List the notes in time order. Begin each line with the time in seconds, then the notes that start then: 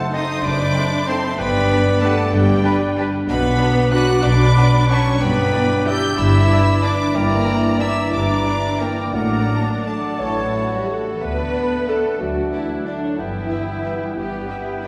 Already playing: F#2 A3 C4 D#4 A4 C5 F#5 A5
0.06 D#5
0.11 A3 C4 D#4 A4 C5 D#5 C6 D#6
0.21 D#4
0.29 C4
0.37 F#3
0.43 F#1 F#2 D4 D5 B5 D6
0.51 C4
0.58 D#4
0.66 A4
0.73 A3 C4 D#4 A4 C5
0.82 D#5
0.91 A5
0.99 D#5
1.07 A3 C4 D#4 A4 C5 A5 C6
1.15 D#4
1.23 C4
1.30 F#3
1.38 G1 G2 G3 B3 B4 D5 G5 B5
1.53 D4
1.61 G4
1.70 G3 D4 G4 B4
1.86 G5
1.94 D5
2.01 G3 A3 D4 G4 A4 B4 F#5 A5
2.10 D4
2.17 B3
2.25 D3
2.32 G1 G2 G3 G4 D5 G5
2.40 B3
2.47 D4
2.55 G4
2.63 G3 D4 G4 B4
2.80 G5
2.89 D5
2.96 G3 D4 G4 B4
3.05 D4
3.13 B3
3.21 D3
3.28 B1 B2 F#3 B3 B4 D5 F#5 B5
3.44 D4
3.52 F#4
3.58 F#3 D4 F#4 B4
3.69 D5
3.77 F#5
3.85 D5
3.92 F#3 D4 F#4 B4 F#5 D6 F#6
4.01 D4
4.10 B3
4.17 F#3
4.23 B1 B2 D4 D5 B5 D6
4.32 B3
4.40 D4
4.48 F#4
4.55 F#3 D4 F#4 B4
4.64 D5
4.72 F#5
4.81 D5
4.88 F#3 C#4 D4 F#4 B4 C#5 A5 C#6
4.97 D4
5.05 B3
5.13 F#3
5.20 G1 G2 B3 B4 D5 G5 B5
5.29 B3
5.37 D4
5.45 E4
5.52 E3 D4 E4 B4 D5
5.62 D5
5.70 E5
5.78 D5
5.85 E3 D4 E4 G4 B4 D5 G5 E6 G6
5.94 D4
6.02 B3
6.09 D3
6.17 G1 G2 E4 E5 B5 E6
6.25 B3
6.33 D4
6.48 E3 D4 E4 B4 D5
6.58 D5
6.75 D5
6.82 E3 D4 E4 B4 D5 B5 D6
6.91 D4
6.99 B3
7.07 D3
7.12 G1 G2 E3 A#3 E4 A#4 D5 G5 A#5
7.22 G3
7.30 D4
7.46 D4 E4 G4
7.55 D5
7.80 E3 D4 E4 G4 D5 E5 A#5 E6
7.97 G3
8.05 D3
8.10 G1 G2 E3 D4 E4 D5 A#5 D6
8.20 G3
8.28 D4
8.44 D4 E4 G4
8.54 D5
8.63 E5
8.79 E3 A#3 D4 E4 G4 A#4 D5 G5 A#5
8.88 D4
8.97 G3
9.05 D3
9.13 A1 A2 F#3 A#3 D4 A#4 D5 F#5 A#5
9.22 F#3
9.31 D4
9.40 F#4
9.50 D4
9.58 D5
9.67 F#5
9.76 D5
9.85 F#3 A3 D4 F#4 A4 D5 F#5 A5
9.94 D4
10.02 F#3
10.10 A3
10.18 A1 A2 E3 E4 A4 C#5
10.26 A3
10.35 C#4
10.43 E4
10.52 F#4 A4
10.70 G3 G4 E5
10.78 C#5
10.88 A3 A4
10.96 C#4
11.05 A3
11.13 E3
11.21 D2 D3 A3 B3 B4 D5 F#5 A5
11.38 A3
11.54 F#4 D5 F#5
11.72 A4
11.87 A3 D4 A4 D5 F#5 A5
12.05 A3
12.18 D2 D3 F#3 A3 F#4 D5 A5
12.23 F#5
12.37 D4
12.52 E3 E4 F#4 D5 F#5
12.70 A4
12.86 D3 F#3 A3 D4 D5 F#5 A5
13.04 A3 C#5
13.18 G1 G2 E3 B3 E4 B4 G5
13.35 G3
13.50 G3 B4 E5 G5
13.68 G4
13.85 B3 B4 E5 G5
14.02 G3
14.16 G1 G2 G3 B3 G4 B4 G5
14.33 B3
14.49 E4 B4 E5 G5
14.66 G4
14.82 B3 D4 B4 E5 G5